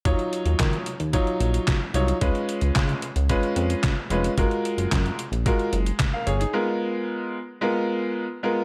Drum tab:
HH |xxxxxxxxxxxxx-xx|xxxxxxxxxxxxx-xx|xxxxxxxxxxxxx-xx|----------------|
CP |----x-------x---|----x-------x---|----x-------x---|----------------|
SD |----o-------o---|----o-------o---|----o-------o---|----------------|
BD |o---o---o---o---|o---o---o---o---|o---o---o---o---|----------------|